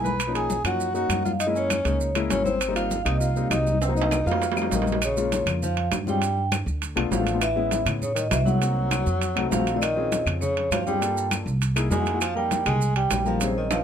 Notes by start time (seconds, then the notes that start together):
Already playing: B1 G#3 A#3 D#4 E4
0.04 B4 B5, high conga, maracas
0.20 high conga, high timbale, claves, maracas
0.27 F3 A#3 C#4 D#4
0.34 G#4 G#5, high conga, high timbale, maracas
0.50 high conga, maracas
0.64 F#2 F3 A#3 C#4 D#4 F#4 F#5, high timbale, claves, maracas
0.80 high conga, maracas
0.94 F#3 A#3 C#4 D#4 F#4 F#5, high conga, maracas
1.09 F#2, high conga, high timbale, claves, maracas
1.25 F4 F5, high conga, maracas
1.40 D#4 D#5, high conga, high timbale, maracas
1.46 G#3 A#3 C#4 E4
1.55 C#4 C#5, high conga, maracas
1.70 high conga, high timbale, claves, maracas
1.85 C#2 G#3 A#3 C#4 D#4, high conga, high timbale, maracas
2.01 high conga, maracas
2.15 G#3 A#3 C#4 E4, high conga, high timbale, claves, maracas
2.29 G#1 C#4 C#5, high conga, high timbale, low timbale, maracas
2.44 C4 C5, high conga, maracas
2.61 high conga, high timbale, claves, maracas
2.68 G3 A#3 C4 D#4
2.76 F4 F5, high conga, high timbale, maracas
2.91 high conga, maracas
3.04 C2 G3 A#3 C4 D#4 D#5, high timbale, claves, maracas
3.20 F4 F5, high conga, maracas
3.36 G3 A#3 C4 D#4, high conga, maracas
3.50 C2 D#4 D#5, high conga, high timbale, low timbale, claves, maracas
3.67 high conga, maracas
3.81 C4 C5, high timbale, maracas
3.89 F#3 A#3 C4 D#4
3.96 D#4 D#5, high conga, maracas
4.02 high timbale
4.11 high conga, high timbale, claves, maracas
4.26 F2 F#3 A#3 C4 D#4 F4 F5, high conga, maracas
4.31 low timbale
4.42 high conga, low timbale, maracas
4.52 low timbale
4.56 G3 A3 C4 D#4, high conga, claves, maracas
4.62 low timbale
4.71 A#1 D#3 D#5, high conga, low timbale, maracas
4.82 low timbale
4.87 high conga, maracas
4.92 low timbale
5.02 C#3 C#5, high timbale, claves, maracas
5.17 G#3 A#3 C#4 F4, high conga, maracas
5.32 high conga, high timbale, low timbale, maracas
5.46 F2, high conga, low conga, high timbale, claves, maracas
5.63 F3 F5, high conga, low conga, maracas
5.77 high conga, high timbale
5.91 G2, high conga, high timbale, low timbale, claves, maracas
6.07 G3 G#3 C4 C#4 F4 G5, high conga, maracas
6.22 high timbale, maracas
6.38 high conga
6.52 high conga, high timbale, low timbale, claves, maracas
6.66 D2, high conga, maracas
6.82 high conga, high timbale, maracas
6.96 B1 A3 B3 D4 F4, high conga, high timbale, claves
7.11 A1 F3 A3 B3 D4 E4 F5, high conga, low timbale, maracas
7.18 A3 B3 D4 F4
7.27 high timbale, maracas
7.34 A3 B3 D4 F4
7.41 E3 E5, high conga, high timbale, claves, maracas
7.56 G#3 B3 C#4 E4, high conga
7.71 high conga, high timbale, low timbale, maracas
7.86 A2, high conga, low conga, high timbale, claves, maracas
8.01 C#3 C#5, high conga, low conga, maracas
8.15 D#3 D#5, high conga, high timbale, maracas
8.30 C2 E3 E5, high conga, high timbale, low timbale, claves, maracas
8.45 F#3 G#3 B3 C#4 E4 F#5, high conga, maracas
8.61 A#3 C4 D#4 F#4, high timbale, maracas
8.76 high conga
8.91 high conga, high timbale, low timbale, claves, maracas
9.06 F2, high conga, maracas
9.21 high conga, high timbale, maracas
9.36 C2 A3 C4 D#4 F#4, high conga, high timbale, claves
9.50 A#1 F3 A3 C4 D#4 F#4 F5, high conga, low timbale, maracas
9.58 A3 C4 D#4 F#4
9.67 high conga, high timbale, maracas
9.73 D3 A3 C4 D#4 F4 D5
9.80 D#3 D#5, high conga, high timbale, claves, maracas
9.96 C4 C#4 F4 G#4, high conga
10.12 high conga, high timbale, low timbale, maracas
10.26 F2, high conga, low conga, high timbale, claves, maracas
10.40 C#3 C#5, high conga, low conga, maracas
10.57 high conga, high timbale
10.71 G2 F3 F5, high conga, high timbale, low timbale, claves, maracas
10.86 G3 C4 C#4 F4 G#4 G5, high conga, maracas
11.01 A#3 D4 F4 A4, high conga, high timbale, maracas
11.17 high conga, maracas
11.31 high conga, high timbale, low timbale, claves, maracas
11.46 C2, high conga, maracas
11.62 high conga, high timbale, maracas
11.76 A#3 D#4 E4 G#4, high conga, high timbale, claves, maracas
11.90 F2 G#3 A#3 D#4 E4 A#4 G#5, high conga, low timbale, maracas
11.98 A#3 D#4 E4 F#4
12.06 high conga, high timbale, maracas
12.13 A#3 D#4 E4 F#4
12.21 F3 F5, high conga, high timbale, claves, maracas
12.35 G3 A#3 D#4 G4 A#4 G5, high conga
12.51 high conga, high timbale, low timbale, maracas
12.66 C2 G#3 G#5, high conga, low conga, high timbale, claves, maracas
12.82 high conga, maracas
12.96 G3 G5, high conga, high timbale
13.10 A#1, high conga, high timbale, low timbale, claves, maracas
13.25 F3 A#3 D#4 G4 A#4 F5, high conga, maracas
13.40 C3 C4 C#4 D#4 G#4 C5, high conga, high timbale, maracas
13.56 D#3 D#5
13.71 F3 F5, high conga, high timbale, claves, maracas